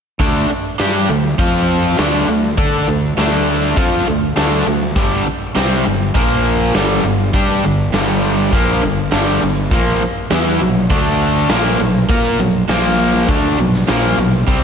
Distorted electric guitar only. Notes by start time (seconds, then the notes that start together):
0.20 D3 A3 D4
0.50 muted distorted electric guitar stroke
0.80 G3 D4 G4
1.10 D3 A3
1.39 F3 C4 F4
1.98 D3 A3 D4
2.29 D3 A3
2.58 D4 A4 D5
2.87 D3 A3
3.18 D3 A3 D4
3.77 F3 C4 F4
4.07 D3 A3
4.36 D3 A3 D4
4.66 D3 A3
4.96 G2 D3 G3
5.26 muted distorted electric guitar stroke
5.55 C3 G3 C4
5.85 G2 D3
6.15 A#2 F3 A#3
6.75 G2 D3 G3
7.05 G2 D3
7.34 G3 D4 G4
7.65 G2 D3
7.94 G2 D3 G3
8.54 A#2 F3 A#3
8.83 G2 D3
9.13 G2 D3 G3
9.43 G2 D3
9.72 A#2 F3 A#3
10.02 muted distorted electric guitar stroke
10.31 E3 B3 E4
10.61 B2 F#3
10.91 D3 A3 D4
11.50 A#2 F3 A#3
11.80 B2 F#3
12.10 A#3 F4 A#4
12.40 B2 F#3
12.69 A#2 F3 A#3
13.29 D3 A3 D4
13.59 B2 F#3
13.88 A#2 F3 A#3
14.18 B2 F#3
14.48 C3 G3 C4